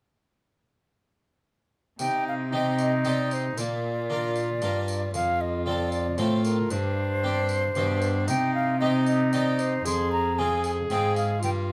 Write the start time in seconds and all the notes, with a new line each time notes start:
1.99 C3 D#4 G5, tambourine
2.28 F5
2.53 C4 D#4 G4 D#5
2.78 D#5, tambourine
3.05 C4 D#4 G4 D5, tambourine
3.31 C5, tambourine
3.57 A#2 F4 D5, tambourine
4.10 D4 F4 A#4
4.36 tambourine
4.62 G2 D4 F4 A#4, tambourine
4.88 tambourine
5.14 F2 F4 F5, tambourine
5.41 D#5
5.66 C4 F4 A4 D5
5.92 D5, tambourine
6.18 A2 C4 F4 A4 C5, tambourine
6.45 A#4, tambourine
6.70 G2 D4 C5, tambourine
7.24 C4 D4 G4
7.49 tambourine
7.75 G2 B2 D4 G4, tambourine
8.02 tambourine
8.28 C3 D#4 G5, tambourine
8.55 F5
8.80 C4 D#4 G4 D#5
9.06 D#5, tambourine
9.33 C4 D#4 G4 D5, tambourine
9.59 C5, tambourine
9.85 F2 G#4 C6, tambourine
10.12 A#5
10.37 C4 F4 G#4 G#5
10.64 G#5, tambourine
10.90 G#2 C4 F4 G#4 G5, tambourine
11.16 F5, tambourine
11.42 G2 F4 G5, tambourine